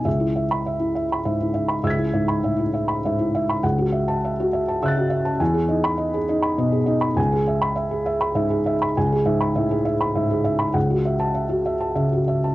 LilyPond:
<<
  \new Staff \with { instrumentName = "Felt piano" } { \time 3/4 \key cis \minor \tempo 4 = 101 << { r8. b''8 r4. r16 | <e''' gis''' b'''>2. | r8. a''8 r8. <e''' fis''' a'''>4 | r8. b''8 r4. r16 |
r8. b''8 r4. r16 | r2. | r8. a''8 r4. r16 | } \\ { e''16 e'16 e''8 e''16 e'16 e''16 b''16 e''16 e'16 e''16 b''16 | e''16 e'16 e''16 b''16 e''16 e'16 e''16 b''16 e''16 e'16 e''16 b''16 | fis''16 fis'16 e''8 e''16 fis'16 e''16 a''16 e''16 fis'16 e''16 a''16 | gis''16 gis'16 dis''8 dis''16 gis'16 dis''16 b''16 dis''16 gis'16 dis''16 b''16 |
gis''16 gis'16 e''8 e''16 gis'16 e''16 b''16 e''16 gis'16 e''16 b''16 | gis''16 gis'16 e''16 b''16 e''16 gis'16 e''16 b''16 e''16 gis'16 e''16 b''16 | fis''16 fis'16 e''8 e''16 fis'16 e''16 a''16 e''16 fis'16 e''16 a''16 | } >> }
  \new Staff \with { instrumentName = "Felt piano" } { \clef bass \time 3/4 \key cis \minor cis,2 gis,4 | cis,8 gis,8 a,8 r8 gis,4 | cis,2 cis4 | e,8 dis'4 dis'8 b,8 dis'8 |
cis,2 gis,4 | cis,8 gis,8 a,8 r8 gis,4 | cis,2 cis4 | }
>>